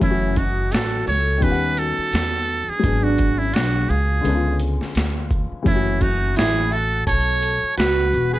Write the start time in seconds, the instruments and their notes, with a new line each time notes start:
Already playing: grand piano E3
0.00 upright bass F#1, grand piano F#3 A3 C#4, clean electric guitar C#4, muted trumpet E4, kick, closed hi-hat
0.04 grand piano E4
0.11 grand piano F#4
0.36 clean electric guitar D#4, muted trumpet F#4, kick, closed hi-hat, shaker
0.71 upright bass A1, clean electric guitar F#4, muted trumpet A4, snare, closed hi-hat
1.06 upright bass C#2, clean electric guitar A4, muted trumpet C#5, shaker
1.38 grand piano D#3 G3 B3, clean electric guitar G4
1.42 upright bass D#2, grand piano C#4 F4, muted trumpet B4, kick, closed hi-hat
1.52 grand piano F#5
1.77 clean electric guitar F#4, muted trumpet A4, closed hi-hat, shaker
1.98 muted upright bass stroke
2.13 upright bass E2, snare, closed hi-hat
2.49 shaker
2.67 clean electric guitar D4, muted trumpet G#4, muted upright bass stroke
2.79 grand piano F#3 G#3 B3
2.84 upright bass G#1, grand piano D4 G#4, kick, closed hi-hat
3.03 clean electric guitar D4, muted trumpet F#4
3.18 kick, closed hi-hat, shaker
3.38 clean electric guitar C#4, muted trumpet E4
3.52 upright bass B1, clean electric guitar D4, muted trumpet F#4, snare, closed hi-hat
3.88 upright bass C#2, clean electric guitar F4, muted trumpet G#4, shaker
4.21 grand piano D3 G#3 B3, closed hi-hat
4.25 upright bass C#2, grand piano C#4 D4
4.35 grand piano F4
4.60 closed hi-hat, shaker
4.81 snare
4.95 upright bass D2, snare, closed hi-hat
5.31 kick, shaker
5.52 muted upright bass stroke
5.63 upright bass F#1, grand piano E3 F#3 A3, clean electric guitar C#4, kick, closed hi-hat
5.67 grand piano C#4 E4, muted trumpet E4
5.76 grand piano F#4
6.01 clean electric guitar D#4, muted trumpet F#4, kick, closed hi-hat, shaker
6.36 upright bass A1, clean electric guitar E4, muted trumpet G#4, snare, closed hi-hat
6.71 clean electric guitar F#4, muted trumpet A4, shaker
7.07 upright bass B1, clean electric guitar A4, muted trumpet C#5, kick, closed hi-hat
7.42 closed hi-hat, shaker
7.63 muted upright bass stroke
7.77 upright bass C#2, clean electric guitar F#4, muted trumpet B4, snare, closed hi-hat
8.13 upright bass E1, shaker
8.33 clean electric guitar G#4, muted trumpet B4